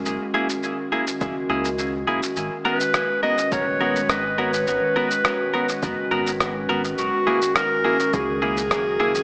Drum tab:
SH |x--xx--xx--xx--x|x--xx--xx--xx--x|x--xx--xx--xx--x|x--xx--xx--xx--x|
SD |----------------|----r-------r---|----r-------r---|----r-------r---|
BD |--------o-------|--------o-------|--------o-------|--------o-------|